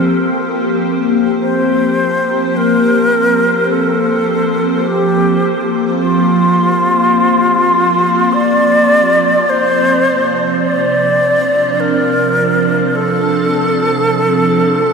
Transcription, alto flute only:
Already playing: A#4
1.42 C5
2.57 A#4
3.70 A4
4.87 G4
6.01 F4
8.33 D5
9.49 C5
10.65 D5
11.80 A#4
12.95 A4

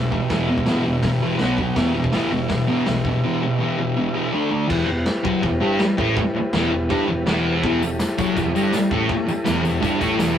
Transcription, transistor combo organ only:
Already playing: G4 B4 E5
1.37 F#4 B4 F#5 B5
1.63 G5
1.74 G4 B4 E5
4.30 D4 A4 D5
4.66 E4 G4 B4
7.60 E4 G4 A4

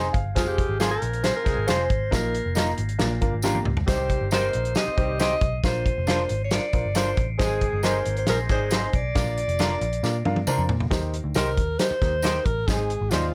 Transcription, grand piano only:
Already playing: C4 D#4 G#4 C5 G#5
0.13 F5
0.35 C4 F4 G#4 C5
0.79 C4 F4 G#4 C5
1.23 C4 F4 G#4 C5
1.44 C4 F4 G#4 A#4
1.67 C4 F4 G#4 C5
2.11 A#2 A#3 D#4 F4 A#4
2.55 A#3 D#4 F4 A#4
2.99 A#2 A#3 D4 F4 A#4
3.21 A#3 D4 F4 A#4
3.43 A#3 D4 F4 G4
3.87 C3 C4 D#4 G4 C5
4.32 C4 D#4 G4 C5
4.76 C4 D#4 G4 C5
4.97 C4 D#4 G4 C5
5.20 C4 D#4 G4 C5
5.64 A#2 D4 F4 A#4 C5
6.07 D4 F4 A#4 D5
6.51 D4 F4 A#4 C5
6.73 D4 F4 A#4 C5
6.95 D4 F4 A#4 D5
7.39 G#3 C4 D#4 G#4 C5
7.83 C4 D#4 G#4 A#4
8.28 C4 D#4 G#4 C5
8.49 C4 D#4 G#4 D5
8.72 C4 D#4 G#4 C5
9.15 A#2 D4 F4 A#4 D5
9.59 D4 F4 A#4 D5
10.03 D4 F4 A#4 D5
10.25 D4 F4 A#4 F5
10.47 D4 F4 A#4 C5
10.90 D#3 D#4 G4 A#4 C5
11.35 D#4 G4 A#4 C5
11.80 D#4 G4 A#4 C5
12.01 D#4 G4 A#4 D#5
12.24 D#4 G4 A#4 D#5
12.68 G#2 C4 D#4 G#4 C5
13.11 C4 D#4 G#4 D5

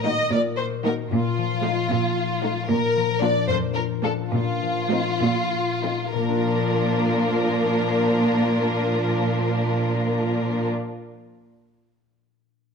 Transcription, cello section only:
Already playing: A#2
0.33 A#2
1.12 A#2
1.90 A#2
2.69 A#2
3.50 F2
4.33 A#2
5.21 A#2
6.15 A#2

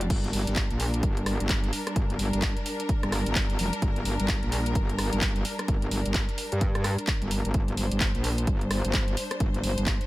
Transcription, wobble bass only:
0.10 G1
0.33 G1
0.47 G1
0.71 A#1
1.03 G1
1.40 G1
1.96 G1
2.19 G1
2.34 G1
3.03 G1
3.26 G1
3.59 F1
3.82 G1
4.06 G1
4.20 G1
4.43 A#1
4.75 G1
5.13 G1
5.68 G1
5.91 G1
6.06 G1
6.52 G2
7.22 G1
7.45 G1
7.54 G1
7.77 G1
7.92 G1
8.15 A#1
8.47 G1
8.85 G1
9.40 G1
9.64 G1
9.78 G1

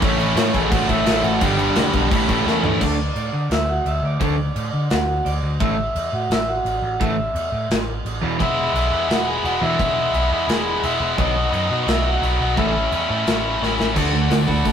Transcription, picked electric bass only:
0.03 A1
0.18 A1
0.36 A2
0.54 A1
0.72 A1
0.89 A1
1.08 A1
1.25 A1
1.42 G1
1.77 E1
1.94 B1
2.12 A1
2.29 A1
2.45 E2
2.63 G2
2.81 D2
3.16 A2
3.33 D3
3.50 D2
3.86 D2
4.03 D2
4.21 D2
4.56 A2
4.73 D3
4.91 D2
5.25 D2
5.43 D2
5.60 A1
5.95 E2
6.12 A2
6.30 A1
6.65 A1
6.83 A1
7.01 A1
7.35 E2
7.52 A2
7.70 A1
8.05 A1
8.23 E1
8.40 E1
8.74 B1
8.93 E2
9.09 E1
9.44 E1
9.62 E1
9.80 E1
10.14 B1
10.30 E2
10.47 E1
10.84 E1
11.00 E1
11.18 B1
11.53 F#2
11.70 B2
11.87 B1
12.22 B1
12.40 B1
12.57 A1
12.92 E2
13.10 A2
13.27 A1
13.62 A1
13.78 A1
13.96 D2
14.14 D2
14.31 D2
14.48 D2
14.65 D2

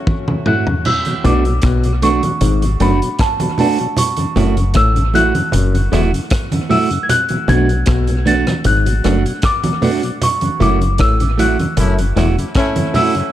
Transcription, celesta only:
Already playing: A5
0.47 F#6
0.86 E6
1.26 D6
2.03 C#6
2.82 B5
3.21 A5
3.60 A5
3.98 C#6
4.77 E6
5.15 F#6
6.71 E6
7.03 G#6
7.10 F#6
7.49 G#6
8.27 A6
8.67 F#6
9.45 D6
10.23 C#6
10.62 D6
11.00 E6
11.40 F#6
12.95 E6

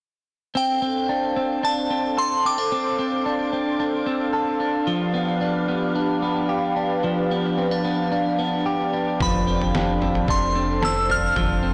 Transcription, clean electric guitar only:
0.55 C4
0.82 C4
1.09 D4
1.36 C4
1.63 D4
1.90 C4
2.17 A4
2.45 C4
2.58 D4
2.72 C4
2.99 C4
3.26 D4
3.53 C4
3.80 D4
4.06 C4
4.33 A4
4.60 D4
4.87 F3
5.14 B3
5.41 D4
5.68 B3
5.95 D4
6.22 B3
6.49 G4
6.76 D4
7.04 F3
7.31 B3
7.58 C4
7.71 D4
7.85 B3
8.12 D4
8.39 B3
8.66 G4
8.94 D4
9.21 F3
9.47 C4
9.75 D4
10.02 C4
10.29 D4
10.55 C4
10.82 A4
11.09 D4
11.36 F3
11.63 C4

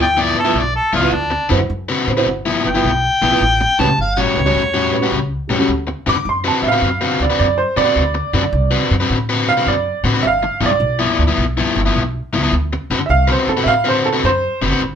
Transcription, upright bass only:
Already playing: D2
0.54 B1
0.93 C#2
1.12 D2
1.51 F#2
1.70 F#2
2.07 A2
2.27 G1
2.65 G1
2.84 B1
3.22 B1
3.41 A1
3.79 C#2
3.98 G1
4.36 C#2
4.54 E2
5.11 C#2
5.49 E2
5.68 D2
6.07 F#2
6.25 F#2
6.62 A2
6.82 F#2
7.20 D2
7.40 F#2
7.76 F#2
7.96 D2
8.33 F#2
8.53 C2
8.91 F#2
9.10 A2
9.67 F#2
10.03 A2
10.23 G1
10.60 B1
10.80 B1
11.19 D2
11.38 B1
11.76 G1
11.95 B1
12.33 C#2
12.52 D2
12.90 F#2
13.09 C2
13.47 F#2
13.66 A2
14.24 F#2
14.61 F#1
14.81 G1

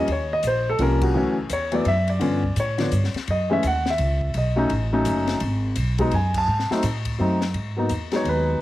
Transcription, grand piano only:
0.12 C#5
0.33 D#5
0.47 C5
0.70 A4
0.80 F3 G3 A#3 C#4 A#4
1.03 F#4
1.14 E3 F#3 A3 C#4
1.53 C#5
1.72 E3 F#3 A3 B3 D5
1.88 E5
2.09 D5
2.20 D3 F3 B3 C#4
2.60 C#5
2.78 D3 F3 B3 D4
3.31 D#5
3.50 E3 G#3 A3 C#4 E5
3.67 F#5
3.90 E5
4.38 D#5
4.56 F#3 A3 C#4 D#4
4.93 F#3 A3 C#4 D#4
5.99 F#3 G#3 B3 D#4
6.14 G#5
6.38 A5
6.71 F#3 A3 C4 D#4
7.18 F#3 A3 C4 D#4
7.77 F#3 A#3 B3 D#4
8.12 F#3 G#3 B3 D#4
8.16 C#5
8.29 B4

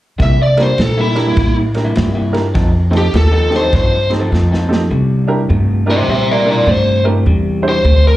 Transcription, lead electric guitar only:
0.22 E5
0.43 D5
0.63 C5
0.82 A4
1.01 E4
2.97 G4
3.17 A4
3.56 C5
3.76 C5
5.90 C5 E5
6.11 C5 E5
6.31 A#4 D5
6.51 A#4 D5
6.71 C5
7.69 C5
8.07 A#4

